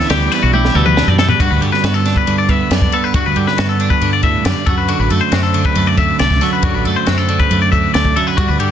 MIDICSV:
0, 0, Header, 1, 5, 480
1, 0, Start_track
1, 0, Tempo, 436047
1, 1548, Time_signature, 4, 2, 24, 8
1, 9588, End_track
2, 0, Start_track
2, 0, Title_t, "Clean electric guitar"
2, 0, Program_c, 0, 27
2, 112, Note_on_c, 0, 67, 81
2, 348, Note_off_c, 0, 67, 0
2, 348, Note_on_c, 0, 71, 68
2, 468, Note_on_c, 0, 66, 80
2, 469, Note_off_c, 0, 71, 0
2, 585, Note_off_c, 0, 66, 0
2, 589, Note_on_c, 0, 67, 90
2, 827, Note_off_c, 0, 67, 0
2, 827, Note_on_c, 0, 69, 85
2, 944, Note_on_c, 0, 71, 80
2, 948, Note_off_c, 0, 69, 0
2, 1189, Note_off_c, 0, 71, 0
2, 1189, Note_on_c, 0, 74, 77
2, 1305, Note_off_c, 0, 74, 0
2, 1310, Note_on_c, 0, 69, 78
2, 1420, Note_off_c, 0, 69, 0
2, 1424, Note_on_c, 0, 71, 71
2, 1545, Note_on_c, 0, 66, 85
2, 1546, Note_off_c, 0, 71, 0
2, 1658, Note_on_c, 0, 71, 61
2, 1666, Note_off_c, 0, 66, 0
2, 1776, Note_off_c, 0, 71, 0
2, 1776, Note_on_c, 0, 67, 73
2, 1894, Note_off_c, 0, 67, 0
2, 1898, Note_on_c, 0, 71, 70
2, 2022, Note_off_c, 0, 71, 0
2, 2023, Note_on_c, 0, 66, 73
2, 2137, Note_off_c, 0, 66, 0
2, 2137, Note_on_c, 0, 69, 62
2, 2382, Note_off_c, 0, 69, 0
2, 2393, Note_on_c, 0, 71, 69
2, 2620, Note_off_c, 0, 71, 0
2, 2624, Note_on_c, 0, 74, 68
2, 2745, Note_off_c, 0, 74, 0
2, 2745, Note_on_c, 0, 76, 80
2, 2986, Note_off_c, 0, 76, 0
2, 2986, Note_on_c, 0, 74, 73
2, 3226, Note_off_c, 0, 74, 0
2, 3230, Note_on_c, 0, 69, 72
2, 3344, Note_off_c, 0, 69, 0
2, 3344, Note_on_c, 0, 71, 64
2, 3465, Note_off_c, 0, 71, 0
2, 3472, Note_on_c, 0, 66, 84
2, 3589, Note_off_c, 0, 66, 0
2, 3590, Note_on_c, 0, 71, 66
2, 3703, Note_on_c, 0, 67, 67
2, 3708, Note_off_c, 0, 71, 0
2, 3825, Note_off_c, 0, 67, 0
2, 3825, Note_on_c, 0, 71, 71
2, 3941, Note_on_c, 0, 66, 76
2, 3945, Note_off_c, 0, 71, 0
2, 4057, Note_off_c, 0, 66, 0
2, 4061, Note_on_c, 0, 69, 66
2, 4295, Note_on_c, 0, 71, 72
2, 4304, Note_off_c, 0, 69, 0
2, 4541, Note_off_c, 0, 71, 0
2, 4546, Note_on_c, 0, 74, 72
2, 4657, Note_off_c, 0, 74, 0
2, 4661, Note_on_c, 0, 76, 80
2, 4897, Note_off_c, 0, 76, 0
2, 4897, Note_on_c, 0, 74, 76
2, 5134, Note_on_c, 0, 69, 75
2, 5142, Note_off_c, 0, 74, 0
2, 5254, Note_off_c, 0, 69, 0
2, 5258, Note_on_c, 0, 71, 71
2, 5379, Note_on_c, 0, 66, 84
2, 5383, Note_off_c, 0, 71, 0
2, 5501, Note_on_c, 0, 71, 65
2, 5503, Note_off_c, 0, 66, 0
2, 5620, Note_off_c, 0, 71, 0
2, 5620, Note_on_c, 0, 69, 70
2, 5732, Note_on_c, 0, 72, 68
2, 5744, Note_off_c, 0, 69, 0
2, 5855, Note_on_c, 0, 66, 81
2, 5860, Note_off_c, 0, 72, 0
2, 5973, Note_off_c, 0, 66, 0
2, 5977, Note_on_c, 0, 69, 68
2, 6223, Note_off_c, 0, 69, 0
2, 6226, Note_on_c, 0, 71, 70
2, 6463, Note_off_c, 0, 71, 0
2, 6463, Note_on_c, 0, 74, 70
2, 6579, Note_off_c, 0, 74, 0
2, 6584, Note_on_c, 0, 76, 81
2, 6815, Note_off_c, 0, 76, 0
2, 6820, Note_on_c, 0, 74, 78
2, 7061, Note_on_c, 0, 69, 74
2, 7064, Note_off_c, 0, 74, 0
2, 7181, Note_off_c, 0, 69, 0
2, 7186, Note_on_c, 0, 71, 68
2, 7305, Note_on_c, 0, 66, 86
2, 7308, Note_off_c, 0, 71, 0
2, 7424, Note_on_c, 0, 71, 57
2, 7427, Note_off_c, 0, 66, 0
2, 7537, Note_off_c, 0, 71, 0
2, 7537, Note_on_c, 0, 69, 64
2, 7664, Note_off_c, 0, 69, 0
2, 7665, Note_on_c, 0, 72, 72
2, 7777, Note_on_c, 0, 66, 77
2, 7788, Note_off_c, 0, 72, 0
2, 7900, Note_off_c, 0, 66, 0
2, 7900, Note_on_c, 0, 69, 69
2, 8142, Note_on_c, 0, 71, 68
2, 8145, Note_off_c, 0, 69, 0
2, 8381, Note_off_c, 0, 71, 0
2, 8385, Note_on_c, 0, 74, 66
2, 8490, Note_off_c, 0, 74, 0
2, 8495, Note_on_c, 0, 76, 82
2, 8735, Note_off_c, 0, 76, 0
2, 8739, Note_on_c, 0, 74, 82
2, 8985, Note_on_c, 0, 69, 72
2, 8986, Note_off_c, 0, 74, 0
2, 9102, Note_off_c, 0, 69, 0
2, 9102, Note_on_c, 0, 71, 66
2, 9215, Note_on_c, 0, 66, 84
2, 9227, Note_off_c, 0, 71, 0
2, 9339, Note_on_c, 0, 71, 65
2, 9344, Note_off_c, 0, 66, 0
2, 9460, Note_off_c, 0, 71, 0
2, 9464, Note_on_c, 0, 67, 67
2, 9581, Note_off_c, 0, 67, 0
2, 9588, End_track
3, 0, Start_track
3, 0, Title_t, "Clean electric guitar"
3, 0, Program_c, 1, 27
3, 0, Note_on_c, 1, 40, 84
3, 0, Note_on_c, 1, 62, 65
3, 0, Note_on_c, 1, 64, 59
3, 109, Note_on_c, 1, 52, 67
3, 116, Note_on_c, 1, 55, 70
3, 592, Note_off_c, 1, 64, 0
3, 605, Note_on_c, 1, 64, 69
3, 826, Note_off_c, 1, 55, 0
3, 830, Note_on_c, 1, 47, 65
3, 839, Note_on_c, 1, 55, 61
3, 1057, Note_off_c, 1, 62, 0
3, 1070, Note_on_c, 1, 62, 66
3, 1303, Note_off_c, 1, 55, 0
3, 1316, Note_on_c, 1, 55, 66
3, 1517, Note_off_c, 1, 52, 0
3, 1519, Note_off_c, 1, 47, 0
3, 1520, Note_off_c, 1, 62, 0
3, 1545, Note_off_c, 1, 40, 0
3, 1549, Note_on_c, 1, 43, 73
3, 1552, Note_off_c, 1, 64, 0
3, 1556, Note_on_c, 1, 66, 65
3, 1786, Note_on_c, 1, 50, 53
3, 2017, Note_off_c, 1, 55, 0
3, 2021, Note_on_c, 1, 59, 56
3, 2270, Note_on_c, 1, 62, 57
3, 2488, Note_off_c, 1, 50, 0
3, 2501, Note_on_c, 1, 50, 62
3, 2734, Note_off_c, 1, 59, 0
3, 2747, Note_on_c, 1, 59, 53
3, 2973, Note_off_c, 1, 50, 0
3, 2986, Note_on_c, 1, 50, 58
3, 3221, Note_off_c, 1, 59, 0
3, 3234, Note_on_c, 1, 59, 55
3, 3438, Note_off_c, 1, 43, 0
3, 3441, Note_off_c, 1, 59, 0
3, 3464, Note_on_c, 1, 43, 70
3, 3468, Note_off_c, 1, 66, 0
3, 3472, Note_on_c, 1, 66, 63
3, 3694, Note_off_c, 1, 50, 0
3, 3707, Note_on_c, 1, 50, 60
3, 3951, Note_on_c, 1, 59, 56
3, 4188, Note_off_c, 1, 62, 0
3, 4192, Note_on_c, 1, 62, 57
3, 4419, Note_off_c, 1, 50, 0
3, 4432, Note_on_c, 1, 50, 61
3, 4664, Note_on_c, 1, 45, 60
3, 4892, Note_off_c, 1, 43, 0
3, 4905, Note_off_c, 1, 45, 0
3, 4906, Note_on_c, 1, 43, 63
3, 5121, Note_off_c, 1, 59, 0
3, 5142, Note_off_c, 1, 43, 0
3, 5147, Note_on_c, 1, 42, 72
3, 5153, Note_off_c, 1, 66, 0
3, 5157, Note_on_c, 1, 66, 63
3, 5370, Note_off_c, 1, 50, 0
3, 5383, Note_on_c, 1, 50, 68
3, 5633, Note_on_c, 1, 57, 60
3, 5865, Note_off_c, 1, 62, 0
3, 5869, Note_on_c, 1, 60, 59
3, 6090, Note_off_c, 1, 50, 0
3, 6104, Note_on_c, 1, 50, 64
3, 6349, Note_off_c, 1, 57, 0
3, 6353, Note_on_c, 1, 57, 58
3, 6572, Note_off_c, 1, 50, 0
3, 6585, Note_on_c, 1, 50, 58
3, 6831, Note_off_c, 1, 57, 0
3, 6845, Note_on_c, 1, 57, 58
3, 7040, Note_off_c, 1, 42, 0
3, 7041, Note_off_c, 1, 60, 0
3, 7048, Note_off_c, 1, 57, 0
3, 7070, Note_on_c, 1, 42, 73
3, 7076, Note_off_c, 1, 66, 0
3, 7080, Note_on_c, 1, 66, 64
3, 7304, Note_off_c, 1, 50, 0
3, 7318, Note_on_c, 1, 50, 66
3, 7564, Note_on_c, 1, 57, 54
3, 7796, Note_on_c, 1, 60, 64
3, 8016, Note_off_c, 1, 50, 0
3, 8029, Note_on_c, 1, 50, 68
3, 8267, Note_off_c, 1, 57, 0
3, 8281, Note_on_c, 1, 57, 59
3, 8490, Note_off_c, 1, 50, 0
3, 8504, Note_on_c, 1, 50, 58
3, 8744, Note_off_c, 1, 57, 0
3, 8757, Note_on_c, 1, 57, 59
3, 8964, Note_off_c, 1, 42, 0
3, 8966, Note_off_c, 1, 57, 0
3, 8967, Note_off_c, 1, 60, 0
3, 8987, Note_on_c, 1, 42, 73
3, 8989, Note_off_c, 1, 66, 0
3, 8994, Note_on_c, 1, 64, 59
3, 9111, Note_off_c, 1, 64, 0
3, 9111, Note_on_c, 1, 66, 49
3, 9203, Note_off_c, 1, 42, 0
3, 9223, Note_off_c, 1, 66, 0
3, 9230, Note_on_c, 1, 43, 69
3, 9237, Note_on_c, 1, 66, 66
3, 9455, Note_off_c, 1, 50, 0
3, 9468, Note_on_c, 1, 50, 60
3, 9588, Note_off_c, 1, 43, 0
3, 9588, Note_off_c, 1, 50, 0
3, 9588, Note_off_c, 1, 66, 0
3, 9588, End_track
4, 0, Start_track
4, 0, Title_t, "Fingered electric bass"
4, 0, Program_c, 2, 33
4, 109, Note_on_c, 2, 38, 91
4, 298, Note_off_c, 2, 38, 0
4, 475, Note_on_c, 2, 35, 83
4, 755, Note_off_c, 2, 35, 0
4, 825, Note_on_c, 2, 38, 94
4, 1109, Note_off_c, 2, 38, 0
4, 1182, Note_on_c, 2, 42, 87
4, 1467, Note_off_c, 2, 42, 0
4, 1541, Note_on_c, 2, 43, 86
4, 1638, Note_off_c, 2, 43, 0
4, 1665, Note_on_c, 2, 38, 92
4, 1760, Note_off_c, 2, 38, 0
4, 1781, Note_on_c, 2, 43, 74
4, 1877, Note_off_c, 2, 43, 0
4, 2020, Note_on_c, 2, 43, 81
4, 2400, Note_off_c, 2, 43, 0
4, 2497, Note_on_c, 2, 43, 80
4, 2878, Note_off_c, 2, 43, 0
4, 2979, Note_on_c, 2, 42, 73
4, 3170, Note_off_c, 2, 42, 0
4, 3456, Note_on_c, 2, 43, 85
4, 3554, Note_off_c, 2, 43, 0
4, 3590, Note_on_c, 2, 38, 90
4, 3683, Note_off_c, 2, 38, 0
4, 3701, Note_on_c, 2, 43, 75
4, 3798, Note_off_c, 2, 43, 0
4, 3948, Note_on_c, 2, 43, 84
4, 4325, Note_off_c, 2, 43, 0
4, 4420, Note_on_c, 2, 43, 75
4, 4800, Note_off_c, 2, 43, 0
4, 4903, Note_on_c, 2, 42, 84
4, 4999, Note_off_c, 2, 42, 0
4, 5139, Note_on_c, 2, 42, 84
4, 5425, Note_off_c, 2, 42, 0
4, 5494, Note_on_c, 2, 33, 91
4, 5594, Note_off_c, 2, 33, 0
4, 5617, Note_on_c, 2, 42, 75
4, 5716, Note_off_c, 2, 42, 0
4, 5856, Note_on_c, 2, 42, 80
4, 6239, Note_off_c, 2, 42, 0
4, 6337, Note_on_c, 2, 42, 82
4, 6720, Note_off_c, 2, 42, 0
4, 6826, Note_on_c, 2, 36, 78
4, 7016, Note_off_c, 2, 36, 0
4, 7298, Note_on_c, 2, 42, 88
4, 7397, Note_off_c, 2, 42, 0
4, 7427, Note_on_c, 2, 33, 101
4, 7522, Note_off_c, 2, 33, 0
4, 7549, Note_on_c, 2, 42, 74
4, 7644, Note_off_c, 2, 42, 0
4, 7787, Note_on_c, 2, 42, 80
4, 8166, Note_off_c, 2, 42, 0
4, 8262, Note_on_c, 2, 42, 85
4, 8644, Note_off_c, 2, 42, 0
4, 8746, Note_on_c, 2, 38, 83
4, 8938, Note_off_c, 2, 38, 0
4, 9222, Note_on_c, 2, 43, 91
4, 9321, Note_off_c, 2, 43, 0
4, 9344, Note_on_c, 2, 38, 100
4, 9442, Note_off_c, 2, 38, 0
4, 9463, Note_on_c, 2, 43, 69
4, 9561, Note_off_c, 2, 43, 0
4, 9588, End_track
5, 0, Start_track
5, 0, Title_t, "Drums"
5, 107, Note_on_c, 9, 51, 79
5, 117, Note_on_c, 9, 38, 101
5, 217, Note_off_c, 9, 51, 0
5, 227, Note_off_c, 9, 38, 0
5, 353, Note_on_c, 9, 51, 70
5, 362, Note_on_c, 9, 38, 41
5, 463, Note_off_c, 9, 51, 0
5, 473, Note_off_c, 9, 38, 0
5, 586, Note_on_c, 9, 48, 61
5, 696, Note_off_c, 9, 48, 0
5, 715, Note_on_c, 9, 38, 57
5, 825, Note_off_c, 9, 38, 0
5, 943, Note_on_c, 9, 47, 67
5, 1054, Note_off_c, 9, 47, 0
5, 1070, Note_on_c, 9, 38, 82
5, 1180, Note_off_c, 9, 38, 0
5, 1306, Note_on_c, 9, 38, 100
5, 1415, Note_on_c, 9, 43, 91
5, 1416, Note_off_c, 9, 38, 0
5, 1525, Note_off_c, 9, 43, 0
5, 1540, Note_on_c, 9, 36, 108
5, 1542, Note_on_c, 9, 51, 83
5, 1651, Note_off_c, 9, 36, 0
5, 1652, Note_off_c, 9, 51, 0
5, 1783, Note_on_c, 9, 51, 58
5, 1893, Note_off_c, 9, 51, 0
5, 1914, Note_on_c, 9, 38, 33
5, 2023, Note_on_c, 9, 51, 78
5, 2024, Note_off_c, 9, 38, 0
5, 2033, Note_on_c, 9, 38, 99
5, 2133, Note_off_c, 9, 51, 0
5, 2143, Note_off_c, 9, 38, 0
5, 2261, Note_on_c, 9, 51, 57
5, 2271, Note_on_c, 9, 38, 34
5, 2371, Note_off_c, 9, 51, 0
5, 2379, Note_on_c, 9, 36, 71
5, 2381, Note_off_c, 9, 38, 0
5, 2489, Note_off_c, 9, 36, 0
5, 2500, Note_on_c, 9, 51, 78
5, 2610, Note_off_c, 9, 51, 0
5, 2738, Note_on_c, 9, 36, 74
5, 2739, Note_on_c, 9, 51, 52
5, 2849, Note_off_c, 9, 36, 0
5, 2849, Note_off_c, 9, 51, 0
5, 2979, Note_on_c, 9, 51, 74
5, 2989, Note_on_c, 9, 38, 91
5, 3090, Note_off_c, 9, 51, 0
5, 3099, Note_off_c, 9, 38, 0
5, 3099, Note_on_c, 9, 36, 77
5, 3209, Note_off_c, 9, 36, 0
5, 3218, Note_on_c, 9, 51, 56
5, 3328, Note_off_c, 9, 51, 0
5, 3458, Note_on_c, 9, 36, 101
5, 3458, Note_on_c, 9, 51, 76
5, 3568, Note_off_c, 9, 51, 0
5, 3569, Note_off_c, 9, 36, 0
5, 3696, Note_on_c, 9, 51, 53
5, 3806, Note_off_c, 9, 51, 0
5, 3825, Note_on_c, 9, 38, 33
5, 3935, Note_off_c, 9, 38, 0
5, 3940, Note_on_c, 9, 51, 71
5, 3950, Note_on_c, 9, 38, 102
5, 4050, Note_off_c, 9, 51, 0
5, 4060, Note_off_c, 9, 38, 0
5, 4179, Note_on_c, 9, 51, 55
5, 4289, Note_off_c, 9, 51, 0
5, 4297, Note_on_c, 9, 36, 74
5, 4407, Note_off_c, 9, 36, 0
5, 4419, Note_on_c, 9, 51, 69
5, 4529, Note_off_c, 9, 51, 0
5, 4653, Note_on_c, 9, 51, 58
5, 4657, Note_on_c, 9, 36, 74
5, 4763, Note_off_c, 9, 51, 0
5, 4767, Note_off_c, 9, 36, 0
5, 4897, Note_on_c, 9, 51, 76
5, 4907, Note_on_c, 9, 38, 96
5, 5008, Note_off_c, 9, 51, 0
5, 5017, Note_off_c, 9, 38, 0
5, 5136, Note_on_c, 9, 51, 59
5, 5138, Note_on_c, 9, 36, 107
5, 5246, Note_off_c, 9, 51, 0
5, 5248, Note_off_c, 9, 36, 0
5, 5376, Note_on_c, 9, 51, 74
5, 5486, Note_off_c, 9, 51, 0
5, 5618, Note_on_c, 9, 51, 60
5, 5728, Note_off_c, 9, 51, 0
5, 5854, Note_on_c, 9, 51, 77
5, 5864, Note_on_c, 9, 38, 98
5, 5964, Note_off_c, 9, 51, 0
5, 5974, Note_off_c, 9, 38, 0
5, 6099, Note_on_c, 9, 51, 68
5, 6209, Note_off_c, 9, 51, 0
5, 6218, Note_on_c, 9, 36, 71
5, 6328, Note_off_c, 9, 36, 0
5, 6333, Note_on_c, 9, 51, 77
5, 6444, Note_off_c, 9, 51, 0
5, 6577, Note_on_c, 9, 36, 74
5, 6578, Note_on_c, 9, 51, 59
5, 6687, Note_off_c, 9, 36, 0
5, 6688, Note_off_c, 9, 51, 0
5, 6816, Note_on_c, 9, 51, 78
5, 6826, Note_on_c, 9, 38, 96
5, 6926, Note_off_c, 9, 51, 0
5, 6936, Note_off_c, 9, 38, 0
5, 6939, Note_on_c, 9, 36, 77
5, 6947, Note_on_c, 9, 38, 36
5, 7050, Note_off_c, 9, 36, 0
5, 7056, Note_on_c, 9, 51, 67
5, 7058, Note_off_c, 9, 38, 0
5, 7066, Note_on_c, 9, 38, 36
5, 7166, Note_off_c, 9, 51, 0
5, 7176, Note_off_c, 9, 38, 0
5, 7294, Note_on_c, 9, 51, 77
5, 7299, Note_on_c, 9, 36, 101
5, 7404, Note_off_c, 9, 51, 0
5, 7409, Note_off_c, 9, 36, 0
5, 7542, Note_on_c, 9, 51, 60
5, 7652, Note_off_c, 9, 51, 0
5, 7776, Note_on_c, 9, 51, 73
5, 7786, Note_on_c, 9, 38, 102
5, 7886, Note_off_c, 9, 51, 0
5, 7896, Note_off_c, 9, 38, 0
5, 8019, Note_on_c, 9, 51, 56
5, 8129, Note_off_c, 9, 51, 0
5, 8141, Note_on_c, 9, 36, 77
5, 8251, Note_off_c, 9, 36, 0
5, 8263, Note_on_c, 9, 51, 70
5, 8373, Note_off_c, 9, 51, 0
5, 8503, Note_on_c, 9, 36, 76
5, 8508, Note_on_c, 9, 51, 51
5, 8614, Note_off_c, 9, 36, 0
5, 8618, Note_off_c, 9, 51, 0
5, 8742, Note_on_c, 9, 51, 70
5, 8752, Note_on_c, 9, 38, 94
5, 8852, Note_off_c, 9, 51, 0
5, 8861, Note_on_c, 9, 36, 77
5, 8862, Note_off_c, 9, 38, 0
5, 8971, Note_off_c, 9, 36, 0
5, 8987, Note_on_c, 9, 51, 60
5, 9097, Note_off_c, 9, 51, 0
5, 9223, Note_on_c, 9, 36, 111
5, 9224, Note_on_c, 9, 51, 78
5, 9333, Note_off_c, 9, 36, 0
5, 9334, Note_off_c, 9, 51, 0
5, 9465, Note_on_c, 9, 51, 61
5, 9575, Note_off_c, 9, 51, 0
5, 9588, End_track
0, 0, End_of_file